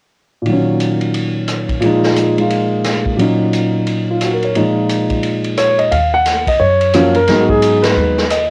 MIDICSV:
0, 0, Header, 1, 4, 480
1, 0, Start_track
1, 0, Key_signature, -6, "minor"
1, 0, Tempo, 341103
1, 643, Time_signature, 4, 2, 24, 8
1, 11963, End_track
2, 0, Start_track
2, 0, Title_t, "Grand piano"
2, 0, Program_c, 0, 0
2, 587, Note_on_c, 0, 46, 42
2, 639, Note_on_c, 0, 51, 38
2, 691, Note_on_c, 0, 54, 43
2, 743, Note_on_c, 0, 61, 46
2, 2520, Note_off_c, 0, 46, 0
2, 2541, Note_on_c, 0, 46, 50
2, 2564, Note_off_c, 0, 51, 0
2, 2566, Note_on_c, 0, 53, 44
2, 2589, Note_on_c, 0, 56, 45
2, 2590, Note_off_c, 0, 54, 0
2, 2613, Note_on_c, 0, 63, 56
2, 2616, Note_off_c, 0, 61, 0
2, 3333, Note_off_c, 0, 56, 0
2, 3354, Note_on_c, 0, 56, 34
2, 3376, Note_on_c, 0, 58, 33
2, 3397, Note_on_c, 0, 65, 38
2, 4435, Note_off_c, 0, 46, 0
2, 4456, Note_on_c, 0, 46, 47
2, 4481, Note_off_c, 0, 56, 0
2, 4481, Note_on_c, 0, 54, 41
2, 4488, Note_off_c, 0, 53, 0
2, 4492, Note_off_c, 0, 58, 0
2, 4501, Note_on_c, 0, 61, 42
2, 4503, Note_off_c, 0, 63, 0
2, 4503, Note_off_c, 0, 65, 0
2, 4524, Note_on_c, 0, 63, 51
2, 5777, Note_on_c, 0, 65, 39
2, 5949, Note_on_c, 0, 66, 42
2, 6014, Note_off_c, 0, 65, 0
2, 6096, Note_on_c, 0, 70, 41
2, 6217, Note_off_c, 0, 66, 0
2, 6254, Note_on_c, 0, 73, 45
2, 6334, Note_off_c, 0, 70, 0
2, 6388, Note_off_c, 0, 46, 0
2, 6402, Note_off_c, 0, 63, 0
2, 6404, Note_off_c, 0, 54, 0
2, 6410, Note_on_c, 0, 46, 40
2, 6414, Note_off_c, 0, 61, 0
2, 6416, Note_on_c, 0, 53, 37
2, 6424, Note_on_c, 0, 56, 38
2, 6424, Note_on_c, 0, 63, 47
2, 6493, Note_off_c, 0, 73, 0
2, 7848, Note_on_c, 0, 73, 65
2, 8125, Note_off_c, 0, 73, 0
2, 8139, Note_on_c, 0, 75, 64
2, 8310, Note_off_c, 0, 75, 0
2, 8321, Note_on_c, 0, 77, 78
2, 8328, Note_off_c, 0, 46, 0
2, 8331, Note_off_c, 0, 53, 0
2, 8335, Note_off_c, 0, 56, 0
2, 8335, Note_off_c, 0, 63, 0
2, 8632, Note_off_c, 0, 77, 0
2, 8637, Note_on_c, 0, 78, 89
2, 9078, Note_off_c, 0, 78, 0
2, 9119, Note_on_c, 0, 75, 69
2, 9281, Note_off_c, 0, 75, 0
2, 9281, Note_on_c, 0, 73, 74
2, 9770, Note_on_c, 0, 54, 63
2, 9771, Note_on_c, 0, 53, 68
2, 9772, Note_on_c, 0, 58, 60
2, 9784, Note_on_c, 0, 61, 81
2, 10007, Note_off_c, 0, 73, 0
2, 10037, Note_off_c, 0, 53, 0
2, 10037, Note_off_c, 0, 54, 0
2, 10038, Note_off_c, 0, 58, 0
2, 10044, Note_off_c, 0, 61, 0
2, 10070, Note_on_c, 0, 70, 88
2, 10254, Note_on_c, 0, 54, 53
2, 10265, Note_on_c, 0, 56, 48
2, 10269, Note_on_c, 0, 59, 50
2, 10271, Note_on_c, 0, 63, 58
2, 10423, Note_on_c, 0, 66, 53
2, 10435, Note_off_c, 0, 70, 0
2, 10545, Note_off_c, 0, 66, 0
2, 10550, Note_on_c, 0, 68, 73
2, 10993, Note_off_c, 0, 68, 0
2, 11016, Note_on_c, 0, 71, 68
2, 11580, Note_off_c, 0, 54, 0
2, 11586, Note_off_c, 0, 56, 0
2, 11588, Note_off_c, 0, 59, 0
2, 11589, Note_off_c, 0, 63, 0
2, 11695, Note_on_c, 0, 75, 67
2, 11701, Note_off_c, 0, 71, 0
2, 11963, Note_off_c, 0, 75, 0
2, 11963, End_track
3, 0, Start_track
3, 0, Title_t, "Upright bass"
3, 0, Program_c, 1, 32
3, 8322, Note_on_c, 1, 39, 71
3, 9236, Note_off_c, 1, 39, 0
3, 9282, Note_on_c, 1, 42, 76
3, 10195, Note_off_c, 1, 42, 0
3, 10242, Note_on_c, 1, 44, 70
3, 11155, Note_off_c, 1, 44, 0
3, 11207, Note_on_c, 1, 39, 74
3, 11963, Note_off_c, 1, 39, 0
3, 11963, End_track
4, 0, Start_track
4, 0, Title_t, "Drums"
4, 641, Note_on_c, 9, 51, 43
4, 782, Note_off_c, 9, 51, 0
4, 1123, Note_on_c, 9, 44, 40
4, 1123, Note_on_c, 9, 51, 43
4, 1263, Note_off_c, 9, 44, 0
4, 1263, Note_off_c, 9, 51, 0
4, 1417, Note_on_c, 9, 51, 32
4, 1557, Note_off_c, 9, 51, 0
4, 1602, Note_on_c, 9, 51, 47
4, 1743, Note_off_c, 9, 51, 0
4, 2078, Note_on_c, 9, 44, 52
4, 2078, Note_on_c, 9, 51, 44
4, 2083, Note_on_c, 9, 37, 52
4, 2219, Note_off_c, 9, 44, 0
4, 2219, Note_off_c, 9, 51, 0
4, 2223, Note_off_c, 9, 37, 0
4, 2381, Note_on_c, 9, 36, 43
4, 2381, Note_on_c, 9, 51, 32
4, 2521, Note_off_c, 9, 51, 0
4, 2522, Note_off_c, 9, 36, 0
4, 2559, Note_on_c, 9, 51, 47
4, 2699, Note_off_c, 9, 51, 0
4, 2864, Note_on_c, 9, 38, 42
4, 3005, Note_off_c, 9, 38, 0
4, 3043, Note_on_c, 9, 44, 42
4, 3043, Note_on_c, 9, 51, 47
4, 3184, Note_off_c, 9, 44, 0
4, 3184, Note_off_c, 9, 51, 0
4, 3349, Note_on_c, 9, 51, 32
4, 3489, Note_off_c, 9, 51, 0
4, 3523, Note_on_c, 9, 51, 49
4, 3664, Note_off_c, 9, 51, 0
4, 4001, Note_on_c, 9, 44, 48
4, 4001, Note_on_c, 9, 51, 53
4, 4005, Note_on_c, 9, 37, 52
4, 4005, Note_on_c, 9, 38, 32
4, 4142, Note_off_c, 9, 44, 0
4, 4142, Note_off_c, 9, 51, 0
4, 4146, Note_off_c, 9, 37, 0
4, 4146, Note_off_c, 9, 38, 0
4, 4303, Note_on_c, 9, 36, 40
4, 4444, Note_off_c, 9, 36, 0
4, 4491, Note_on_c, 9, 51, 44
4, 4632, Note_off_c, 9, 51, 0
4, 4966, Note_on_c, 9, 44, 46
4, 4966, Note_on_c, 9, 51, 44
4, 5107, Note_off_c, 9, 44, 0
4, 5107, Note_off_c, 9, 51, 0
4, 5439, Note_on_c, 9, 51, 47
4, 5580, Note_off_c, 9, 51, 0
4, 5919, Note_on_c, 9, 44, 51
4, 5919, Note_on_c, 9, 51, 54
4, 5924, Note_on_c, 9, 37, 50
4, 6060, Note_off_c, 9, 44, 0
4, 6060, Note_off_c, 9, 51, 0
4, 6064, Note_off_c, 9, 37, 0
4, 6225, Note_on_c, 9, 51, 31
4, 6366, Note_off_c, 9, 51, 0
4, 6402, Note_on_c, 9, 51, 47
4, 6543, Note_off_c, 9, 51, 0
4, 6884, Note_on_c, 9, 44, 41
4, 6884, Note_on_c, 9, 51, 49
4, 7024, Note_off_c, 9, 44, 0
4, 7024, Note_off_c, 9, 51, 0
4, 7175, Note_on_c, 9, 51, 34
4, 7180, Note_on_c, 9, 36, 37
4, 7315, Note_off_c, 9, 51, 0
4, 7321, Note_off_c, 9, 36, 0
4, 7359, Note_on_c, 9, 51, 46
4, 7499, Note_off_c, 9, 51, 0
4, 7658, Note_on_c, 9, 51, 37
4, 7798, Note_off_c, 9, 51, 0
4, 7843, Note_on_c, 9, 44, 53
4, 7843, Note_on_c, 9, 51, 56
4, 7847, Note_on_c, 9, 37, 54
4, 7983, Note_off_c, 9, 44, 0
4, 7983, Note_off_c, 9, 51, 0
4, 7988, Note_off_c, 9, 37, 0
4, 8142, Note_on_c, 9, 51, 34
4, 8282, Note_off_c, 9, 51, 0
4, 8325, Note_on_c, 9, 51, 50
4, 8466, Note_off_c, 9, 51, 0
4, 8800, Note_on_c, 9, 44, 48
4, 8800, Note_on_c, 9, 51, 56
4, 8805, Note_on_c, 9, 38, 32
4, 8941, Note_off_c, 9, 44, 0
4, 8941, Note_off_c, 9, 51, 0
4, 8945, Note_off_c, 9, 38, 0
4, 9104, Note_on_c, 9, 36, 47
4, 9107, Note_on_c, 9, 51, 59
4, 9244, Note_off_c, 9, 36, 0
4, 9247, Note_off_c, 9, 51, 0
4, 9578, Note_on_c, 9, 51, 43
4, 9719, Note_off_c, 9, 51, 0
4, 9758, Note_on_c, 9, 44, 59
4, 9758, Note_on_c, 9, 51, 61
4, 9762, Note_on_c, 9, 37, 55
4, 9898, Note_off_c, 9, 44, 0
4, 9898, Note_off_c, 9, 51, 0
4, 9902, Note_off_c, 9, 37, 0
4, 10053, Note_on_c, 9, 51, 36
4, 10194, Note_off_c, 9, 51, 0
4, 10236, Note_on_c, 9, 51, 49
4, 10241, Note_on_c, 9, 38, 32
4, 10377, Note_off_c, 9, 51, 0
4, 10381, Note_off_c, 9, 38, 0
4, 10542, Note_on_c, 9, 36, 49
4, 10683, Note_off_c, 9, 36, 0
4, 10725, Note_on_c, 9, 44, 46
4, 10725, Note_on_c, 9, 51, 60
4, 10866, Note_off_c, 9, 44, 0
4, 10866, Note_off_c, 9, 51, 0
4, 11028, Note_on_c, 9, 51, 60
4, 11032, Note_on_c, 9, 38, 67
4, 11168, Note_off_c, 9, 51, 0
4, 11173, Note_off_c, 9, 38, 0
4, 11511, Note_on_c, 9, 38, 44
4, 11652, Note_off_c, 9, 38, 0
4, 11686, Note_on_c, 9, 44, 50
4, 11686, Note_on_c, 9, 51, 57
4, 11690, Note_on_c, 9, 37, 60
4, 11827, Note_off_c, 9, 44, 0
4, 11827, Note_off_c, 9, 51, 0
4, 11831, Note_off_c, 9, 37, 0
4, 11963, End_track
0, 0, End_of_file